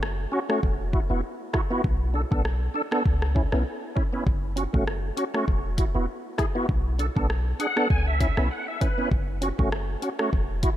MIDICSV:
0, 0, Header, 1, 4, 480
1, 0, Start_track
1, 0, Key_signature, 3, "minor"
1, 0, Tempo, 606061
1, 1460, Time_signature, 4, 2, 24, 8
1, 8527, End_track
2, 0, Start_track
2, 0, Title_t, "Tonewheel organ"
2, 0, Program_c, 0, 16
2, 252, Note_on_c, 0, 61, 82
2, 263, Note_on_c, 0, 66, 90
2, 309, Note_off_c, 0, 61, 0
2, 315, Note_off_c, 0, 66, 0
2, 388, Note_on_c, 0, 57, 80
2, 394, Note_on_c, 0, 61, 72
2, 399, Note_on_c, 0, 66, 83
2, 476, Note_off_c, 0, 57, 0
2, 478, Note_off_c, 0, 61, 0
2, 481, Note_off_c, 0, 66, 0
2, 734, Note_on_c, 0, 64, 86
2, 744, Note_on_c, 0, 66, 89
2, 791, Note_off_c, 0, 64, 0
2, 796, Note_off_c, 0, 66, 0
2, 868, Note_on_c, 0, 59, 76
2, 873, Note_on_c, 0, 64, 70
2, 878, Note_on_c, 0, 66, 85
2, 955, Note_off_c, 0, 59, 0
2, 958, Note_off_c, 0, 64, 0
2, 961, Note_off_c, 0, 66, 0
2, 1214, Note_on_c, 0, 64, 84
2, 1225, Note_on_c, 0, 66, 89
2, 1271, Note_off_c, 0, 64, 0
2, 1276, Note_off_c, 0, 66, 0
2, 1349, Note_on_c, 0, 59, 74
2, 1354, Note_on_c, 0, 64, 67
2, 1360, Note_on_c, 0, 66, 81
2, 1436, Note_off_c, 0, 59, 0
2, 1439, Note_off_c, 0, 64, 0
2, 1441, Note_off_c, 0, 66, 0
2, 1693, Note_on_c, 0, 62, 78
2, 1704, Note_on_c, 0, 69, 87
2, 1750, Note_off_c, 0, 62, 0
2, 1755, Note_off_c, 0, 69, 0
2, 1827, Note_on_c, 0, 59, 78
2, 1832, Note_on_c, 0, 62, 71
2, 1838, Note_on_c, 0, 69, 88
2, 1915, Note_off_c, 0, 59, 0
2, 1917, Note_off_c, 0, 62, 0
2, 1920, Note_off_c, 0, 69, 0
2, 2172, Note_on_c, 0, 62, 86
2, 2182, Note_on_c, 0, 69, 93
2, 2230, Note_off_c, 0, 62, 0
2, 2235, Note_off_c, 0, 69, 0
2, 2308, Note_on_c, 0, 59, 80
2, 2314, Note_on_c, 0, 62, 68
2, 2319, Note_on_c, 0, 69, 86
2, 2395, Note_off_c, 0, 59, 0
2, 2398, Note_off_c, 0, 62, 0
2, 2401, Note_off_c, 0, 69, 0
2, 2652, Note_on_c, 0, 61, 82
2, 2663, Note_on_c, 0, 64, 90
2, 2710, Note_off_c, 0, 61, 0
2, 2715, Note_off_c, 0, 64, 0
2, 2788, Note_on_c, 0, 59, 75
2, 2793, Note_on_c, 0, 61, 73
2, 2799, Note_on_c, 0, 64, 83
2, 2876, Note_off_c, 0, 59, 0
2, 2878, Note_off_c, 0, 61, 0
2, 2881, Note_off_c, 0, 64, 0
2, 3133, Note_on_c, 0, 61, 82
2, 3143, Note_on_c, 0, 64, 89
2, 3190, Note_off_c, 0, 61, 0
2, 3195, Note_off_c, 0, 64, 0
2, 3268, Note_on_c, 0, 59, 77
2, 3273, Note_on_c, 0, 61, 67
2, 3278, Note_on_c, 0, 64, 80
2, 3355, Note_off_c, 0, 59, 0
2, 3358, Note_off_c, 0, 61, 0
2, 3360, Note_off_c, 0, 64, 0
2, 3612, Note_on_c, 0, 61, 79
2, 3623, Note_on_c, 0, 66, 90
2, 3670, Note_off_c, 0, 61, 0
2, 3675, Note_off_c, 0, 66, 0
2, 3747, Note_on_c, 0, 57, 75
2, 3752, Note_on_c, 0, 61, 70
2, 3758, Note_on_c, 0, 66, 88
2, 3835, Note_off_c, 0, 57, 0
2, 3838, Note_off_c, 0, 61, 0
2, 3840, Note_off_c, 0, 66, 0
2, 4093, Note_on_c, 0, 61, 81
2, 4104, Note_on_c, 0, 66, 89
2, 4150, Note_off_c, 0, 61, 0
2, 4155, Note_off_c, 0, 66, 0
2, 4229, Note_on_c, 0, 57, 77
2, 4234, Note_on_c, 0, 61, 72
2, 4239, Note_on_c, 0, 66, 86
2, 4316, Note_off_c, 0, 57, 0
2, 4318, Note_off_c, 0, 61, 0
2, 4321, Note_off_c, 0, 66, 0
2, 4574, Note_on_c, 0, 64, 79
2, 4585, Note_on_c, 0, 66, 90
2, 4630, Note_off_c, 0, 64, 0
2, 4636, Note_off_c, 0, 66, 0
2, 4708, Note_on_c, 0, 59, 76
2, 4713, Note_on_c, 0, 64, 69
2, 4719, Note_on_c, 0, 66, 81
2, 4795, Note_off_c, 0, 59, 0
2, 4798, Note_off_c, 0, 64, 0
2, 4801, Note_off_c, 0, 66, 0
2, 5053, Note_on_c, 0, 64, 83
2, 5063, Note_on_c, 0, 68, 89
2, 5110, Note_off_c, 0, 64, 0
2, 5115, Note_off_c, 0, 68, 0
2, 5188, Note_on_c, 0, 59, 70
2, 5193, Note_on_c, 0, 64, 66
2, 5198, Note_on_c, 0, 66, 83
2, 5275, Note_off_c, 0, 59, 0
2, 5278, Note_off_c, 0, 64, 0
2, 5280, Note_off_c, 0, 66, 0
2, 5534, Note_on_c, 0, 62, 85
2, 5544, Note_on_c, 0, 69, 95
2, 5590, Note_off_c, 0, 62, 0
2, 5596, Note_off_c, 0, 69, 0
2, 5668, Note_on_c, 0, 59, 81
2, 5673, Note_on_c, 0, 62, 68
2, 5678, Note_on_c, 0, 69, 87
2, 5755, Note_off_c, 0, 59, 0
2, 5758, Note_off_c, 0, 62, 0
2, 5761, Note_off_c, 0, 69, 0
2, 6014, Note_on_c, 0, 62, 83
2, 6020, Note_on_c, 0, 78, 68
2, 6025, Note_on_c, 0, 68, 92
2, 6071, Note_off_c, 0, 62, 0
2, 6076, Note_off_c, 0, 68, 0
2, 6148, Note_on_c, 0, 59, 77
2, 6154, Note_on_c, 0, 62, 71
2, 6159, Note_on_c, 0, 69, 87
2, 6235, Note_off_c, 0, 59, 0
2, 6238, Note_off_c, 0, 62, 0
2, 6241, Note_off_c, 0, 69, 0
2, 6243, Note_off_c, 0, 78, 0
2, 6261, Note_on_c, 0, 80, 69
2, 6385, Note_off_c, 0, 80, 0
2, 6395, Note_on_c, 0, 76, 68
2, 6492, Note_off_c, 0, 76, 0
2, 6496, Note_on_c, 0, 61, 82
2, 6502, Note_on_c, 0, 76, 67
2, 6506, Note_on_c, 0, 64, 91
2, 6551, Note_off_c, 0, 61, 0
2, 6557, Note_off_c, 0, 64, 0
2, 6631, Note_on_c, 0, 59, 76
2, 6636, Note_on_c, 0, 61, 69
2, 6641, Note_on_c, 0, 64, 88
2, 6717, Note_off_c, 0, 59, 0
2, 6719, Note_off_c, 0, 61, 0
2, 6722, Note_off_c, 0, 64, 0
2, 6724, Note_off_c, 0, 76, 0
2, 6740, Note_on_c, 0, 78, 70
2, 6865, Note_off_c, 0, 78, 0
2, 6876, Note_on_c, 0, 76, 69
2, 6973, Note_off_c, 0, 76, 0
2, 6976, Note_on_c, 0, 61, 82
2, 6981, Note_on_c, 0, 71, 72
2, 6986, Note_on_c, 0, 64, 87
2, 7031, Note_off_c, 0, 61, 0
2, 7036, Note_off_c, 0, 64, 0
2, 7110, Note_on_c, 0, 59, 77
2, 7115, Note_on_c, 0, 61, 66
2, 7120, Note_on_c, 0, 64, 83
2, 7196, Note_off_c, 0, 59, 0
2, 7199, Note_off_c, 0, 61, 0
2, 7201, Note_off_c, 0, 64, 0
2, 7203, Note_off_c, 0, 71, 0
2, 7457, Note_on_c, 0, 61, 83
2, 7468, Note_on_c, 0, 66, 89
2, 7512, Note_off_c, 0, 61, 0
2, 7517, Note_off_c, 0, 66, 0
2, 7591, Note_on_c, 0, 57, 81
2, 7596, Note_on_c, 0, 61, 71
2, 7601, Note_on_c, 0, 66, 85
2, 7677, Note_off_c, 0, 57, 0
2, 7680, Note_off_c, 0, 61, 0
2, 7682, Note_off_c, 0, 66, 0
2, 7936, Note_on_c, 0, 61, 81
2, 7946, Note_on_c, 0, 66, 90
2, 7991, Note_off_c, 0, 61, 0
2, 7997, Note_off_c, 0, 66, 0
2, 8069, Note_on_c, 0, 57, 80
2, 8074, Note_on_c, 0, 61, 75
2, 8080, Note_on_c, 0, 66, 83
2, 8156, Note_off_c, 0, 57, 0
2, 8158, Note_off_c, 0, 61, 0
2, 8161, Note_off_c, 0, 66, 0
2, 8416, Note_on_c, 0, 64, 84
2, 8426, Note_on_c, 0, 66, 89
2, 8471, Note_off_c, 0, 64, 0
2, 8476, Note_off_c, 0, 66, 0
2, 8527, End_track
3, 0, Start_track
3, 0, Title_t, "808-style bass"
3, 0, Program_c, 1, 38
3, 0, Note_on_c, 1, 30, 97
3, 207, Note_off_c, 1, 30, 0
3, 500, Note_on_c, 1, 28, 108
3, 816, Note_off_c, 1, 28, 0
3, 874, Note_on_c, 1, 28, 91
3, 963, Note_off_c, 1, 28, 0
3, 1460, Note_on_c, 1, 35, 111
3, 1776, Note_off_c, 1, 35, 0
3, 1835, Note_on_c, 1, 35, 110
3, 2126, Note_off_c, 1, 35, 0
3, 2420, Note_on_c, 1, 37, 105
3, 2736, Note_off_c, 1, 37, 0
3, 2793, Note_on_c, 1, 35, 91
3, 2883, Note_off_c, 1, 35, 0
3, 3378, Note_on_c, 1, 30, 107
3, 3695, Note_off_c, 1, 30, 0
3, 3755, Note_on_c, 1, 30, 96
3, 4046, Note_off_c, 1, 30, 0
3, 4339, Note_on_c, 1, 28, 105
3, 4656, Note_off_c, 1, 28, 0
3, 4714, Note_on_c, 1, 28, 93
3, 4803, Note_off_c, 1, 28, 0
3, 5299, Note_on_c, 1, 35, 109
3, 5615, Note_off_c, 1, 35, 0
3, 5675, Note_on_c, 1, 35, 109
3, 5966, Note_off_c, 1, 35, 0
3, 6259, Note_on_c, 1, 37, 105
3, 6575, Note_off_c, 1, 37, 0
3, 6633, Note_on_c, 1, 35, 95
3, 6723, Note_off_c, 1, 35, 0
3, 7218, Note_on_c, 1, 30, 105
3, 7535, Note_off_c, 1, 30, 0
3, 7595, Note_on_c, 1, 30, 95
3, 7887, Note_off_c, 1, 30, 0
3, 8180, Note_on_c, 1, 28, 108
3, 8496, Note_off_c, 1, 28, 0
3, 8527, End_track
4, 0, Start_track
4, 0, Title_t, "Drums"
4, 21, Note_on_c, 9, 37, 98
4, 101, Note_off_c, 9, 37, 0
4, 393, Note_on_c, 9, 37, 89
4, 473, Note_off_c, 9, 37, 0
4, 500, Note_on_c, 9, 36, 89
4, 579, Note_off_c, 9, 36, 0
4, 739, Note_on_c, 9, 36, 91
4, 819, Note_off_c, 9, 36, 0
4, 1218, Note_on_c, 9, 37, 91
4, 1222, Note_on_c, 9, 36, 90
4, 1297, Note_off_c, 9, 37, 0
4, 1301, Note_off_c, 9, 36, 0
4, 1459, Note_on_c, 9, 36, 105
4, 1538, Note_off_c, 9, 36, 0
4, 1835, Note_on_c, 9, 36, 92
4, 1914, Note_off_c, 9, 36, 0
4, 1941, Note_on_c, 9, 37, 95
4, 2020, Note_off_c, 9, 37, 0
4, 2313, Note_on_c, 9, 37, 95
4, 2392, Note_off_c, 9, 37, 0
4, 2420, Note_on_c, 9, 36, 91
4, 2499, Note_off_c, 9, 36, 0
4, 2552, Note_on_c, 9, 37, 83
4, 2631, Note_off_c, 9, 37, 0
4, 2659, Note_on_c, 9, 36, 95
4, 2738, Note_off_c, 9, 36, 0
4, 2791, Note_on_c, 9, 37, 89
4, 2870, Note_off_c, 9, 37, 0
4, 3141, Note_on_c, 9, 36, 90
4, 3220, Note_off_c, 9, 36, 0
4, 3379, Note_on_c, 9, 36, 109
4, 3458, Note_off_c, 9, 36, 0
4, 3619, Note_on_c, 9, 42, 75
4, 3698, Note_off_c, 9, 42, 0
4, 3755, Note_on_c, 9, 36, 89
4, 3834, Note_off_c, 9, 36, 0
4, 3861, Note_on_c, 9, 37, 93
4, 3940, Note_off_c, 9, 37, 0
4, 4098, Note_on_c, 9, 42, 77
4, 4177, Note_off_c, 9, 42, 0
4, 4233, Note_on_c, 9, 37, 93
4, 4312, Note_off_c, 9, 37, 0
4, 4339, Note_on_c, 9, 36, 89
4, 4418, Note_off_c, 9, 36, 0
4, 4578, Note_on_c, 9, 42, 95
4, 4579, Note_on_c, 9, 36, 92
4, 4657, Note_off_c, 9, 42, 0
4, 4658, Note_off_c, 9, 36, 0
4, 5056, Note_on_c, 9, 37, 86
4, 5061, Note_on_c, 9, 36, 86
4, 5061, Note_on_c, 9, 42, 70
4, 5135, Note_off_c, 9, 37, 0
4, 5140, Note_off_c, 9, 36, 0
4, 5140, Note_off_c, 9, 42, 0
4, 5298, Note_on_c, 9, 36, 109
4, 5378, Note_off_c, 9, 36, 0
4, 5539, Note_on_c, 9, 42, 73
4, 5619, Note_off_c, 9, 42, 0
4, 5675, Note_on_c, 9, 36, 89
4, 5754, Note_off_c, 9, 36, 0
4, 5781, Note_on_c, 9, 37, 90
4, 5860, Note_off_c, 9, 37, 0
4, 6018, Note_on_c, 9, 42, 78
4, 6097, Note_off_c, 9, 42, 0
4, 6153, Note_on_c, 9, 37, 91
4, 6232, Note_off_c, 9, 37, 0
4, 6259, Note_on_c, 9, 36, 94
4, 6338, Note_off_c, 9, 36, 0
4, 6499, Note_on_c, 9, 36, 95
4, 6499, Note_on_c, 9, 42, 92
4, 6578, Note_off_c, 9, 36, 0
4, 6578, Note_off_c, 9, 42, 0
4, 6631, Note_on_c, 9, 37, 90
4, 6711, Note_off_c, 9, 37, 0
4, 6981, Note_on_c, 9, 36, 92
4, 6981, Note_on_c, 9, 42, 71
4, 7060, Note_off_c, 9, 36, 0
4, 7060, Note_off_c, 9, 42, 0
4, 7219, Note_on_c, 9, 36, 112
4, 7298, Note_off_c, 9, 36, 0
4, 7460, Note_on_c, 9, 42, 77
4, 7539, Note_off_c, 9, 42, 0
4, 7595, Note_on_c, 9, 36, 91
4, 7674, Note_off_c, 9, 36, 0
4, 7701, Note_on_c, 9, 37, 97
4, 7780, Note_off_c, 9, 37, 0
4, 7939, Note_on_c, 9, 42, 78
4, 8018, Note_off_c, 9, 42, 0
4, 8073, Note_on_c, 9, 37, 93
4, 8152, Note_off_c, 9, 37, 0
4, 8180, Note_on_c, 9, 36, 90
4, 8259, Note_off_c, 9, 36, 0
4, 8418, Note_on_c, 9, 42, 94
4, 8420, Note_on_c, 9, 36, 94
4, 8497, Note_off_c, 9, 42, 0
4, 8499, Note_off_c, 9, 36, 0
4, 8527, End_track
0, 0, End_of_file